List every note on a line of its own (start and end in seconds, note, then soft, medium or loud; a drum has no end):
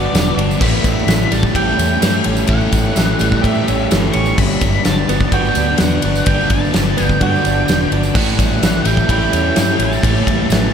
0.00 0.59 G2 medium
0.00 0.12 D3 medium
0.00 0.59 D3 medium
0.00 0.36 F#3 medium
0.00 0.57 B3 medium
0.00 0.60 B3 medium
0.00 0.61 B3 medium
0.00 0.36 D4 medium
0.00 0.57 D4 medium
0.00 0.60 D4 medium
0.00 0.60 F#4 medium
0.00 0.34 D5 medium
0.00 0.56 D5 medium
0.13 0.30 E1 loud
0.13 0.61 D3 medium
0.13 snare loud
0.13 ride loud
0.13 tambourine loud
0.27 tambourine soft
0.37 0.54 G1 loud
0.37 0.60 F#3 medium
0.37 0.61 D4 medium
0.37 ride medium
0.51 tambourine medium
0.59 0.78 A1 loud
0.59 1.33 A2 loud
0.59 1.79 A2 medium
0.59 1.31 E3 loud
0.59 1.31 A3 loud
0.59 4.34 C#4 medium
0.59 4.33 A4 medium
0.59 4.34 E5 medium
0.59 1.28 B5 loud
0.59 kick loud
0.59 crash loud
0.75 tambourine soft
0.84 1.01 A1 medium
0.84 1.30 G3 medium
0.84 kick loud
0.84 ride medium
0.84 tambourine medium
0.99 tambourine soft
1.07 1.24 A1 loud
1.07 1.99 E3 medium
1.07 snare loud
1.07 ride loud
1.07 tambourine loud
1.23 tambourine soft
1.31 1.49 A1 medium
1.31 2.47 A2 medium
1.31 2.48 E3 medium
1.31 2.24 G3 medium
1.31 2.48 A3 medium
1.31 1.55 A5 loud
1.31 ride medium
1.31 tambourine medium
1.43 kick medium
1.43 tambourine soft
1.53 1.72 A1 loud
1.53 2.72 E4 medium
1.53 3.41 G4 medium
1.53 2.22 G5 medium
1.53 kick loud
1.53 ride loud
1.69 tambourine soft
1.77 1.96 E2 loud
1.77 2.96 C#4 medium
1.77 ride medium
1.77 tambourine medium
2.00 2.20 G2 loud
2.00 2.94 E3 medium
2.00 snare loud
2.00 ride loud
2.00 tambourine loud
2.15 tambourine soft
2.24 2.43 A1 medium
2.24 2.71 G3 medium
2.24 3.43 C#4 medium
2.24 ride medium
2.37 tambourine medium
2.47 2.66 A1 loud
2.47 3.66 A2 medium
2.47 3.18 A2 loud
2.47 3.19 E3 loud
2.47 3.19 A3 loud
2.47 3.46 F#5 loud
2.47 kick loud
2.47 ride loud
2.61 tambourine soft
2.72 2.90 A1 medium
2.72 3.19 G3 medium
2.72 kick loud
2.72 ride medium
2.72 tambourine medium
2.84 tambourine soft
2.95 3.14 A1 medium
2.95 3.89 E3 medium
2.95 snare loud
2.95 ride loud
2.95 tambourine loud
3.19 3.37 A1 loud
3.19 4.37 A2 medium
3.19 4.37 E3 medium
3.19 4.14 G3 medium
3.19 4.36 A3 loud
3.19 ride medium
3.19 tambourine medium
3.32 kick medium
3.32 tambourine soft
3.42 3.61 A2 loud
3.42 4.37 E4 medium
3.42 4.88 G4 medium
3.42 3.87 E5 loud
3.42 kick loud
3.42 ride loud
3.42 tambourine soft
3.55 tambourine soft
3.66 3.85 A1 medium
3.66 4.37 C#4 medium
3.66 ride medium
3.66 tambourine medium
3.79 tambourine soft
3.90 4.09 G1 medium
3.90 4.38 E3 medium
3.90 snare loud
3.90 ride loud
3.90 tambourine loud
4.03 snare soft
4.13 4.32 A1 loud
4.13 4.62 G3 medium
4.13 4.38 C#4 medium
4.13 4.38 C#6 loud
4.13 ride medium
4.13 tambourine soft
4.26 tambourine medium
4.37 4.55 G1 loud
4.37 5.11 G2 loud
4.37 5.56 G2 medium
4.37 5.08 D3 loud
4.37 8.11 D4 medium
4.37 8.11 B4 medium
4.37 6.24 D5 medium
4.37 4.87 B5 loud
4.37 kick loud
4.37 crash loud
4.49 tambourine soft
4.61 4.78 G1 medium
4.61 5.10 F#3 medium
4.61 kick loud
4.61 ride medium
4.61 tambourine medium
4.73 tambourine soft
4.85 5.03 G1 loud
4.85 5.79 D3 medium
4.85 5.33 A5 loud
4.85 snare loud
4.85 ride loud
4.85 tambourine medium
4.97 tambourine soft
5.09 5.26 G1 medium
5.09 6.24 G2 medium
5.09 6.26 D3 medium
5.09 6.02 F#3 medium
5.09 6.27 B3 medium
5.09 ride medium
5.09 tambourine medium
5.20 kick medium
5.20 tambourine soft
5.32 5.50 G1 loud
5.32 6.50 D4 medium
5.32 6.51 F#4 medium
5.32 5.80 G5 loud
5.32 kick loud
5.32 ride loud
5.45 tambourine soft
5.55 5.73 D2 medium
5.55 6.74 B3 medium
5.55 6.04 D4 medium
5.55 ride medium
5.55 tambourine medium
5.78 5.97 E2 loud
5.78 6.73 D3 medium
5.78 6.26 F#5 medium
5.78 snare loud
5.78 ride loud
5.78 tambourine medium
5.92 tambourine soft
6.02 6.21 G1 medium
6.02 6.50 F#3 medium
6.02 7.22 D4 medium
6.02 ride medium
6.15 tambourine medium
6.26 6.44 G1 loud
6.26 6.95 G2 loud
6.26 7.44 G2 medium
6.26 6.96 D3 loud
6.26 8.14 D5 medium
6.26 6.51 G5 medium
6.26 kick loud
6.26 ride loud
6.30 tambourine soft
6.41 tambourine soft
6.50 6.67 G1 loud
6.50 6.97 F#3 medium
6.50 7.05 A5 medium
6.50 kick loud
6.50 ride medium
6.65 tambourine soft
6.74 6.92 G1 medium
6.74 7.68 D3 medium
6.74 snare loud
6.74 ride loud
6.74 tambourine loud
6.97 7.16 G1 medium
6.97 8.15 G2 medium
6.97 8.14 D3 medium
6.97 7.92 F#3 medium
6.97 8.15 B3 medium
6.97 ride medium
6.97 tambourine medium
7.05 7.21 G5 medium
7.09 kick medium
7.21 7.38 G2 loud
7.21 8.15 D4 medium
7.21 8.16 F#4 medium
7.21 7.88 G5 medium
7.21 kick loud
7.21 ride loud
7.35 tambourine soft
7.45 7.62 G1 medium
7.45 8.15 B3 medium
7.45 7.91 D4 medium
7.45 ride medium
7.45 tambourine medium
7.68 7.86 E1 loud
7.68 8.15 D3 medium
7.68 snare loud
7.68 ride loud
7.68 tambourine loud
7.82 tambourine soft
7.92 8.09 G1 loud
7.92 8.16 F#3 medium
7.92 8.16 D4 medium
7.92 ride medium
8.03 tambourine medium
8.13 8.32 A1 loud
8.13 8.87 A2 loud
8.13 9.32 A2 medium
8.13 8.86 E3 loud
8.13 8.84 A3 loud
8.13 10.73 C#4 medium
8.13 10.73 G4 medium
8.13 10.01 A4 medium
8.13 10.73 E5 medium
8.13 8.86 F#5 loud
8.13 kick loud
8.13 crash loud
8.39 8.56 A1 medium
8.39 8.86 G3 medium
8.39 kick loud
8.39 ride medium
8.39 tambourine medium
8.51 tambourine soft
8.61 8.79 A1 medium
8.61 9.55 E3 medium
8.61 snare loud
8.61 ride loud
8.61 tambourine loud
8.75 snare soft
8.75 tambourine soft
8.85 9.03 A1 loud
8.85 10.00 A2 medium
8.85 10.01 E3 medium
8.85 9.79 G3 medium
8.85 10.01 A3 medium
8.85 9.10 G5 medium
8.85 ride medium
8.85 tambourine medium
8.97 kick medium
8.97 tambourine soft
9.09 9.26 A1 loud
9.09 10.27 E4 medium
9.09 9.83 G5 loud
9.09 kick loud
9.09 ride loud
9.22 tambourine soft
9.33 9.50 E2 medium
9.33 10.51 C#4 medium
9.33 ride medium
9.33 tambourine medium
9.56 9.74 G2 loud
9.56 10.48 E3 medium
9.56 snare loud
9.56 ride loud
9.56 tambourine medium
9.70 tambourine soft
9.79 9.96 A1 loud
9.79 10.25 G3 medium
9.79 10.73 C#4 medium
9.79 ride medium
9.84 10.73 A5 loud
9.93 tambourine medium
10.01 10.21 A1 loud
10.01 10.72 A2 loud
10.01 10.73 A2 medium
10.01 10.72 E3 loud
10.01 10.72 A3 loud
10.01 10.73 B4 medium
10.01 kick loud
10.01 ride loud
10.16 tambourine soft
10.27 10.44 A1 loud
10.27 10.73 G3 medium
10.27 kick loud
10.27 ride loud
10.49 10.67 A1 medium
10.49 10.73 E3 medium
10.49 snare loud
10.49 ride loud
10.49 tambourine medium
10.63 tambourine soft